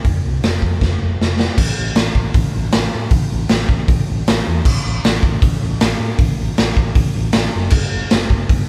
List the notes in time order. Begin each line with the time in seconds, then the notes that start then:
0.05 F1, kick, open hi-hat
0.25 C2
0.42 F1, snare, open hi-hat
0.62 F2, kick
0.81 F1, kick, snare
1.00 F1
1.19 F1, snare
1.40 snare
1.58 A1, kick, crash
1.78 A1
1.95 A1, snare, open hi-hat
2.15 A1, kick
2.34 A1, kick, open hi-hat
2.56 A1
2.72 A1, snare, open hi-hat
2.95 A2
3.11 A1, kick, open hi-hat
3.32 A1
3.49 A1, snare, open hi-hat
3.69 A1, kick
3.88 A1, kick, open hi-hat
4.10 A1
4.27 A1, snare, open hi-hat
4.47 E2
4.65 A1, kick, crash
4.85 A1
5.04 A1, snare, open hi-hat
5.23 A1, kick
5.42 A1, kick, open hi-hat
5.62 A1
5.80 A1, snare, open hi-hat
6.00 A2
6.19 A1, kick, open hi-hat
6.38 A1
6.58 A1, snare, open hi-hat
6.77 A1, kick
6.95 A1, kick, open hi-hat
7.16 A1
7.32 A1, snare, open hi-hat
7.56 F#1
7.70 G1, kick, crash
7.92 G1
8.10 G1, snare, open hi-hat
8.30 G1, kick
8.49 G1, kick, open hi-hat